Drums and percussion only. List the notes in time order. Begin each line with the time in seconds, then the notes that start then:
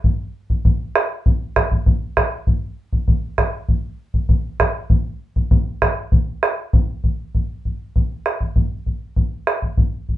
0.04 bombo low
0.50 bombo low
0.65 bombo low
0.95 bombo rim
1.26 bombo low
1.56 bombo rim, bombo low
1.71 bombo low
1.86 bombo low
2.17 bombo rim, bombo low
2.47 bombo low
2.93 bombo low
3.08 bombo low
3.38 bombo rim, bombo low
3.69 bombo low
4.14 bombo low
4.29 bombo low
4.60 bombo rim, bombo low
4.90 bombo low
5.36 bombo low
5.51 bombo low
5.82 bombo rim, bombo low
6.12 bombo low
6.43 bombo rim
6.73 bombo low
7.04 bombo low
7.35 bombo low
7.65 bombo low
7.96 bombo low
8.26 bombo rim
8.41 bombo low
8.56 bombo low
8.86 bombo low
9.16 bombo low
9.47 bombo rim
9.62 bombo low
9.77 bombo low
10.09 bombo low